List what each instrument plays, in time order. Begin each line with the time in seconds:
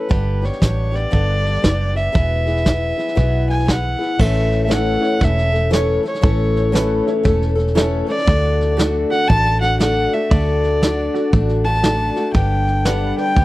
Already playing: steel-string acoustic guitar C#4, fiddle B4
0.09 fingered electric bass G1, steel-string acoustic guitar G2 D3 G3 B3 D4 G4, kick, snare
0.42 steel-string acoustic guitar G3 B3 D4 G4, fiddle C#5, snare
0.53 snare
0.61 fingered electric bass A1, steel-string acoustic guitar G3 B3 D4 G4, fiddle C#5, kick, snare, hi-hat pedal
0.92 steel-string acoustic guitar G3 B3 D4 G4, fiddle D5, snare
1.11 fingered electric bass G1, steel-string acoustic guitar G2 D3 G3 B3 D4 G4, kick, snare
1.46 snare
1.55 snare
1.62 fingered electric bass F#1, steel-string acoustic guitar G3 B3 D4 G4, kick, snare, hi-hat pedal
1.95 steel-string acoustic guitar G3 B3 D4 G4, fiddle E5, snare
2.12 fingered electric bass E1, steel-string acoustic guitar E2 B2 E3 B3 E4 G#4, kick, snare
2.47 steel-string acoustic guitar E3 B3 E4 G#4, snare
2.57 snare
2.65 steel-string acoustic guitar E3 B3 E4 G#4, kick, snare, hi-hat pedal
2.97 steel-string acoustic guitar E3 B3 E4 G#4, snare
3.08 snare
3.15 fingered electric bass B1, steel-string acoustic guitar E2 B2 E3 B3 E4 G#4, kick, snare
3.50 fiddle G#5, snare
3.60 snare
3.65 steel-string acoustic guitar E3 B3 E4 G#4, kick, snare, hi-hat pedal
3.70 fiddle F#5
3.99 steel-string acoustic guitar E3 B3 E4 G#4, snare
4.18 fingered electric bass A1, steel-string acoustic guitar A2 E3 A3 C#4 A4, fiddle E5, kick, snare, crash
4.52 snare
4.64 steel-string acoustic guitar A2, fiddle E5
4.69 steel-string acoustic guitar E3 A3 C#4 A4, honky-tonk piano E4 A4 C#5, fiddle F#5, snare, hi-hat pedal
5.01 honky-tonk piano E4 A4 C#5, snare
5.19 fingered electric bass E1, steel-string acoustic guitar E3 A3 C#4 A4, kick, snare
5.24 fiddle E5
5.38 snare
5.52 steel-string acoustic guitar A3 C#4 A4, snare
5.70 steel-string acoustic guitar A2 E3 A3 C#4 A4, honky-tonk piano E4 A4 C#5, fiddle C#5, snare, hi-hat pedal
6.03 steel-string acoustic guitar A3 C#4 A4, snare
6.08 fiddle C#5
6.14 snare
6.21 fingered electric bass A1, steel-string acoustic guitar A2 E3 A3 C#4 A4, kick, snare
6.57 snare
6.72 steel-string acoustic guitar A2 E3 A3 C#4 A4, honky-tonk piano E4 A4 B4, snare, hi-hat pedal
7.07 honky-tonk piano E4 A4 C#5, snare
7.23 fingered electric bass E1, steel-string acoustic guitar E3 A3 C#4 A4, kick, snare
7.42 snare
7.55 steel-string acoustic guitar A3 C#4 A4, snare
7.68 snare
7.75 steel-string acoustic guitar A2 E3 A3 C#4 A4, honky-tonk piano E4 A4 C#5, snare, hi-hat pedal
8.07 steel-string acoustic guitar A3 C#4 A4, fiddle D5, snare
8.18 snare
8.26 fingered electric bass D2, steel-string acoustic guitar D3 A3 D4 F#4, kick, snare
8.61 snare
8.77 steel-string acoustic guitar D3 A3 D4 F#4, honky-tonk piano F#4 A4 D5, snare, hi-hat pedal
9.10 honky-tonk piano F#4 A4 D5, fiddle F#5, snare
9.28 fingered electric bass A1, steel-string acoustic guitar D3 A3 D4 F#4, fiddle A5, kick, snare
9.47 snare
9.61 steel-string acoustic guitar A3 D4 F#4, fiddle F#5, snare
9.79 steel-string acoustic guitar D3 A3 D4 F#4, honky-tonk piano F#4 A4 D5, fiddle F#5, snare, hi-hat pedal
10.13 steel-string acoustic guitar A3 D4 F#4, fiddle E5, snare
10.30 fingered electric bass D2, steel-string acoustic guitar D3 A3 D4 F#4, fiddle D5, kick, snare
10.64 snare
10.82 steel-string acoustic guitar D3 A3 D4 F#4, honky-tonk piano F#4 A4 D5, snare, hi-hat pedal
11.14 honky-tonk piano F#4 A4 D5, snare
11.32 fingered electric bass A1, steel-string acoustic guitar D3 A3 D4 F#4, kick, snare
11.49 snare
11.64 steel-string acoustic guitar A3 D4 F#4, fiddle A5, snare
11.75 snare
11.83 steel-string acoustic guitar D3 A3 D4 F#4, honky-tonk piano F#4 A4 D5, snare, hi-hat pedal
12.16 steel-string acoustic guitar A3 D4 F#4, snare
12.34 fingered electric bass G1, steel-string acoustic guitar G2 D3 G3 B3 D4 G4, fiddle G5, kick, snare
12.68 snare
12.85 steel-string acoustic guitar G2 D3 G3 B3 D4 G4, honky-tonk piano G4 B4 D5, fiddle F#5, snare, hi-hat pedal
13.17 honky-tonk piano G4 B4 D5, fiddle G5, snare
13.36 fingered electric bass D2, steel-string acoustic guitar G3 B3 D4 G4, kick, snare